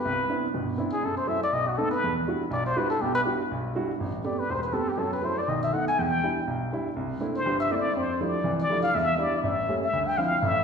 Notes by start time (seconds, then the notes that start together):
Already playing: B4
0.05 C2
0.29 B3 C4 D4 E4
0.54 G1 B2
0.78 B3 C4 D4 E4
0.93 G#4
1.03 F#2 A4
1.17 C5
1.27 F#3 A3 E4 E5
1.44 D5
1.53 B1 D#5
1.68 F#4
1.78 A3 B3 C4 D#4 A4
1.91 B4
2.04 E2
2.27 G3 D4 E4 F#4
2.51 B1 D5
2.66 C5
2.76 G3 D4 E4 F#4 B4
2.90 A4
3.01 B1 B2 G4
3.15 B4
3.25 G3 D4 E4 F#4
3.51 B1
3.75 G3 D4 E4 F#4
4.00 A1
4.24 A3 B3 C4 G4 D5
4.40 B4
4.49 E1 C5
4.63 B4
4.72 A3 B3 C4 G4 A4
4.89 G4
4.98 F#2 F#3 A4
5.13 B4
5.22 F#3 A3 E4 C5
5.38 D5
5.48 B1 D#3 D#5
5.63 E5
5.73 A3 B3 D#4 F#5
5.88 G#5
5.99 E2 G5
6.23 G3 D4 E4
6.47 B1
6.73 G3 D4 E4
6.96 C2
7.20 A3 A#3 C4 D4 E4
7.36 C5
7.46 G1 G2
7.60 E5
7.70 A3 A#3 C4 D4 E4 D5
7.96 F2 C5
8.21 F3 G3 A3 D4 E4 D5
8.44 C2 E3
8.60 D5
8.70 F3 G3 A3 D4 E4
8.83 F5
8.95 E2 E5
9.18 G3 D4 E4 D5
9.44 A1 E5
9.68 G3 A3 A#3 C#4
9.84 E5
9.93 D2
10.07 G5
10.18 F3 C4 D4 E4 F5
10.42 A1 A2 E5